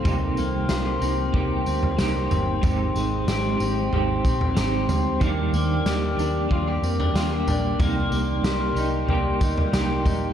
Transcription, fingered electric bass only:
\new Staff \with { instrumentName = "Fingered electric bass" } { \clef bass \time 4/4 \key c \minor \tempo 4 = 93 c,8 c,8 c,8 c,8 c,8 d,8 c,8 g,,8 | aes,,8 aes,,8 aes,,8 aes,,8 aes,,8 bes,,8 aes,,8 d,8 | ees,8 ees,8 ees,8 ees,8 ees,8 f,8 ees,8 bes,,8 | c,8 c,8 c,8 c,8 c,8 d,8 c,8 bes,,8 | }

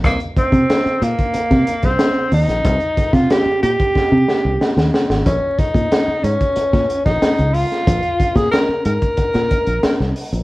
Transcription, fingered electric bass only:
\new Staff \with { instrumentName = "Fingered electric bass" } { \clef bass \time 4/4 \key c \phrygian \tempo 4 = 92 c,16 r8 c16 r8 bes,16 r8 c16 r16 c,16 r8 ees,16 bes,,16 | c,16 r8 c16 r8 bes,16 r8 c16 r16 c,16 r16 ees,16 r16 aes,,16 | bes,,16 r8 bes,16 r8 aes,16 r8 bes,16 r16 bes,,16 r16 des,8 r16 | bes,,16 r8 bes,16 r8 aes,16 r8 bes,16 r16 bes,,16 r16 c,16 r16 bes,,16 | }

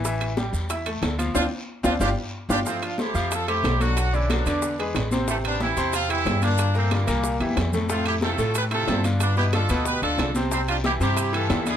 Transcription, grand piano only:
\new Staff \with { instrumentName = "Grand piano" } { \time 4/4 \key f \lydian \tempo 4 = 183 <e e'>4 <g g'>4 <e' e''>8 <a a'>4 <f f'>8 | <c' d' f'>8 r4 <c' d' f'>8 <d' f' g'>8 r4 <d' f' g'>8 | <f f' f''>4 <a a' c''>8 <f f' f''>4 <a a' c''>8 <a a' c''>8 <fis fis' a'>8~ | <fis fis' a'>8 <d d' d''>8 <fis fis' a'>8 <d d' d''>4 <gis gis' b'>4 <c c' c''>8 |
<c c' c''>4 <e e' g'>8 <c c' c''>4 <e e' g'>8 <e e' g'>8 <d d' f'>8~ | <d d' f'>8 <bes, bes bes'>8 <d d' f'>8 <bes, bes bes'>4 <e e' g'>4 <a, a a'>8 | <a, a a'>4 <c c' e'>8 <a, a a'>4 <c c' e'>8 <c c' e'>8 <d d' f'>8~ | <d d' f'>8 <b, b b'>8 <d d' f'>8 <b, b b'>4 <d d' f'>4 <c c' c''>8 |
<c c' c''>4 <e e' g'>8 <c c' c''>4 <e e' g'>8 <e e' g'>8 <d d' e'>8 | }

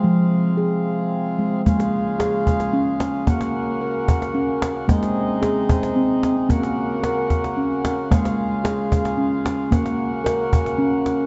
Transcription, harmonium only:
<<
  \new Staff \with { instrumentName = "Harmonium" } { \time 6/8 \key des \major \tempo 4. = 74 <aes f'>2. | <aes f'>2. | <bes ges'>2. | <aes ees'>2. |
<bes ges'>2. | <aes f'>2. | <bes ges'>2. | }
  \new Staff \with { instrumentName = "Harmonium" } { \clef bass \time 6/8 \key des \major c2. | des2.~ | des2. | c2. |
des2.~ | des2.~ | des2. | }
>>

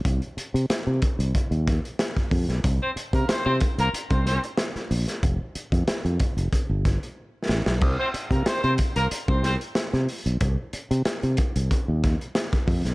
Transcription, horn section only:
\new Staff \with { instrumentName = "Horn section" } { \time 4/4 \key f \mixolydian \tempo 4 = 93 r1 | r16 <c' c''>16 r16 <bes bes'>16 <c' c''>16 <c' c''>16 r16 <bes bes'>16 r16 <c' c''>16 <c' c''>16 r4 r16 | r1 | r16 <c' c''>16 r16 <bes bes'>16 <c' c''>16 <c' c''>16 r16 <bes bes'>16 r16 <c' c''>16 <c' c''>16 r4 r16 |
r1 | }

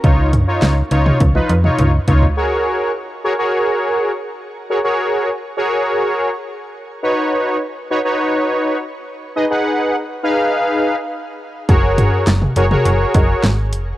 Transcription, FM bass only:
\new Staff \with { instrumentName = "FM bass" } { \clef bass \time 4/4 \key fis \major \tempo 4 = 103 cis,4 cis,8 cis,8 cis,8 eis,8 cis,8 cis,8 | r1 | r1 | r1 |
r1 | fis,,4 fis,,8 fis,,8 fis,,8 fis,,8 gis,,8 eis,,8 | }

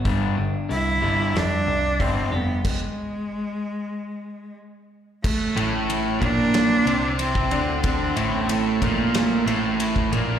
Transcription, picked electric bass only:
\new Staff \with { instrumentName = "Picked electric bass" } { \clef bass \time 4/4 \key a \minor \tempo 4 = 92 g,,8 g,,8 c,8 g,,8 f,8 c,8 g,,8 f,,8 | r1 | r8 a,,4 bes,,4 c,4 d,8~ | d,8 a,,4 bes,,4 a,,4 bes,,8 | }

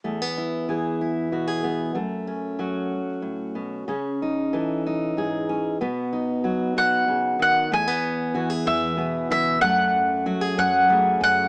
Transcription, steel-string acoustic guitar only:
\new Staff \with { instrumentName = "Steel-string acoustic guitar" } { \time 6/8 \key e \major \tempo 4. = 63 << { a16 b16 e'8 gis'8 e'8 fis'16 gis'16 b8 | a8 cis'8 fis'2 | cis'8 dis'8 a'8 dis'8 gis'8 cis'8 | b8 dis'8 fis'2 |
a16 b8. fis'16 gis'16 e'8 b8 e'8 | a4 fis'16 gis'16 cis'8 a8 cis'8 | } \\ { e,4 e4 b,4 | fis,4 fis4 a,8 b,8 | cis4 e4 gis,4 | b,4 fis8 b,8 cis8 dis8 |
e,4 e4 b,4 | fis,4 fis4 cis4 | } >> }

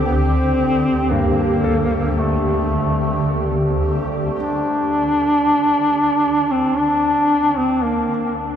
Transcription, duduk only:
\new Staff \with { instrumentName = "Duduk" } { \time 4/4 \key c \dorian \tempo 4 = 56 c'4 bes4 a4. r8 | d'2 c'16 d'8. c'16 bes8 r16 | }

